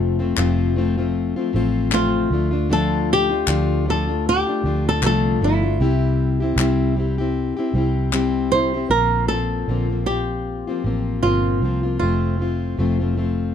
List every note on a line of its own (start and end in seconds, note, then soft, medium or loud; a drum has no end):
0.00 0.33 F1 medium
0.00 0.19 F2 medium
0.00 0.20 C3 medium
0.00 0.20 F3 medium
0.00 0.20 A3 medium
0.00 0.19 C4 medium
0.00 0.18 F4 medium
0.00 0.73 A4 medium
0.19 0.37 F3 medium
0.19 0.37 A3 medium
0.19 0.37 C4 medium
0.19 0.37 F4 medium
0.37 1.32 F1 medium
0.37 0.76 F2 medium
0.37 0.76 C3 medium
0.37 0.75 F3 medium
0.37 0.75 A3 medium
0.37 0.77 C4 medium
0.37 0.77 F4 medium
0.37 clap medium
0.76 0.97 F3 medium
0.76 0.97 A3 medium
0.76 0.97 C4 medium
0.76 0.96 F4 medium
0.98 1.38 F3 medium
0.98 1.37 A3 medium
0.98 1.36 C4 medium
0.98 1.35 F4 medium
1.36 1.52 F3 medium
1.36 1.53 A3 medium
1.36 1.54 C4 medium
1.36 1.54 F4 medium
1.53 2.27 A1 medium
1.53 1.92 F3 medium
1.53 1.92 A3 medium
1.53 1.93 C4 medium
1.53 1.93 F4 medium
1.92 2.31 F2 medium
1.92 2.31 C3 medium
1.92 2.30 F3 medium
1.92 2.31 A3 medium
1.92 2.32 C4 medium
1.92 2.32 F4 medium
1.92 2.72 F4 medium
1.92 clap medium
2.31 3.43 D2 medium
2.31 2.52 F3 medium
2.31 2.53 A3 medium
2.31 2.52 D4 medium
2.35 2.50 F4 medium
2.51 2.69 A3 soft
2.51 2.70 D4 medium
2.51 2.69 F4 medium
2.69 3.30 D3 medium
2.69 3.30 F3 medium
2.69 3.30 A3 medium
2.69 3.31 D4 medium
2.69 3.28 F4 loud
2.69 3.11 A4 loud
3.13 3.90 G4 loud
3.29 3.47 A3 soft
3.29 3.48 D4 soft
3.29 3.47 F4 medium
3.47 4.42 D2 loud
3.47 3.86 D3 medium
3.47 3.85 F3 medium
3.47 3.86 A3 medium
3.47 3.87 D4 medium
3.47 3.87 F4 medium
3.47 clap medium
3.86 4.07 F3 medium
3.86 4.08 A3 medium
3.86 4.08 D4 medium
3.86 4.06 F4 medium
3.90 4.28 A4 medium
4.08 4.48 A3 soft
4.08 4.47 D4 medium
4.08 4.45 F4 medium
4.29 4.88 G4 loud
4.47 4.64 A3 medium
4.47 4.65 D4 medium
4.47 4.64 F4 medium
4.64 4.99 D2 medium
4.64 5.02 F3 medium
4.64 5.03 A3 medium
4.64 5.04 D4 medium
4.64 5.04 F4 medium
4.89 5.05 A4 medium
5.02 5.38 C2 medium
5.02 5.41 D3 medium
5.02 5.40 F3 medium
5.02 5.41 A3 medium
5.02 5.42 D4 medium
5.02 5.43 F4 medium
5.02 clap medium
5.06 5.44 A4 medium
5.41 5.77 G1 medium
5.41 5.62 F3 medium
5.41 5.63 A3 medium
5.41 5.63 D4 medium
5.41 8.10 E4 medium
5.41 5.61 F4 medium
5.62 5.81 A3 soft
5.62 5.81 D4 medium
5.62 5.80 F4 medium
5.79 6.53 C2 loud
5.79 6.40 C3 loud
5.79 6.40 G3 medium
5.79 6.41 C4 medium
5.79 6.41 E4 medium
5.79 6.39 G4 loud
6.40 6.58 C4 medium
6.40 6.59 E4 medium
6.40 6.58 G4 medium
6.56 7.52 C2 loud
6.56 6.96 C3 medium
6.56 6.95 G3 medium
6.56 6.96 C4 medium
6.56 6.97 E4 medium
6.56 clap medium
6.60 6.98 G4 medium
6.96 7.18 G3 medium
6.96 7.18 C4 medium
6.96 7.19 E4 medium
6.96 7.17 G4 medium
7.18 7.58 C4 medium
7.18 7.57 E4 medium
7.18 7.55 G4 medium
7.57 7.74 C4 medium
7.57 7.75 E4 medium
7.57 7.74 G4 medium
7.74 8.86 C2 medium
7.74 8.12 G3 medium
7.74 8.13 C4 medium
7.74 8.13 E4 medium
7.78 8.13 G4 medium
8.12 8.51 C3 medium
8.12 8.51 G3 medium
8.12 8.52 C4 medium
8.12 8.52 E4 medium
8.12 8.52 G4 medium
8.12 clap medium
8.52 8.73 G3 medium
8.52 8.74 C4 medium
8.52 8.74 E4 medium
8.52 8.72 G4 medium
8.52 8.90 C5 medium
8.74 8.92 C4 medium
8.74 8.91 E4 medium
8.74 8.91 G4 medium
8.90 9.64 A#1 medium
8.90 9.29 A#2 medium
8.90 9.30 D3 medium
8.90 9.28 F3 medium
8.90 9.29 A#3 medium
8.90 9.31 C4 medium
8.90 9.31 F4 medium
8.90 9.27 A#4 medium
9.28 9.68 F3 medium
9.28 9.68 A#3 medium
9.28 9.69 C4 medium
9.28 10.06 A4 medium
9.33 9.69 F4 medium
9.68 10.63 A#1 medium
9.68 9.90 A#2 medium
9.68 9.90 D3 medium
9.68 9.90 F3 medium
9.68 9.90 A#3 medium
9.68 9.90 C4 medium
9.68 9.88 F4 medium
9.90 10.06 F3 soft
9.90 10.07 A#3 soft
9.90 10.08 C4 soft
9.90 10.07 F4 soft
10.06 10.67 F3 soft
10.06 10.68 A#3 medium
10.06 10.68 C4 medium
10.06 11.22 G4 medium
10.11 10.66 F4 medium
10.67 10.83 F3 soft
10.67 10.85 A#3 soft
10.67 10.85 C4 soft
10.67 10.85 F4 medium
10.84 11.20 A1 medium
10.84 11.23 F3 medium
10.84 11.23 A#3 medium
10.84 11.24 C4 medium
10.84 11.24 F4 medium
11.23 11.59 G1 medium
11.23 11.62 A#2 medium
11.23 11.62 D3 medium
11.23 11.61 F3 medium
11.23 11.63 A#3 medium
11.23 11.63 C4 medium
11.23 11.97 F4 medium
11.23 11.63 F4 medium
11.61 11.97 C2 medium
11.61 11.84 F3 medium
11.61 11.84 A#3 medium
11.61 11.83 C4 medium
11.65 11.82 F4 medium
11.83 12.00 F3 soft
11.83 12.01 A#3 soft
11.83 12.01 C4 soft
11.83 12.01 F4 medium
11.99 12.75 F1 medium
11.99 12.40 F2 medium
11.99 12.40 C3 medium
11.99 12.37 F3 medium
11.99 12.38 A3 medium
11.99 12.39 C4 medium
11.99 13.13 F4 medium
11.99 12.41 F4 medium
12.38 12.78 F3 medium
12.38 12.78 A3 soft
12.38 12.78 C4 medium
12.38 12.79 F4 medium
12.78 13.55 F1 medium
12.78 13.00 F2 medium
12.78 13.00 C3 medium
12.78 13.00 F3 medium
12.78 13.01 A3 medium
12.78 13.00 C4 medium
12.78 12.98 F4 medium
13.00 13.15 F3 soft
13.00 13.16 A3 soft
13.00 13.17 C4 medium
13.00 13.18 F4 medium
13.16 13.55 F3 medium
13.16 13.55 A3 medium
13.16 13.55 C4 medium
13.16 13.55 F4 medium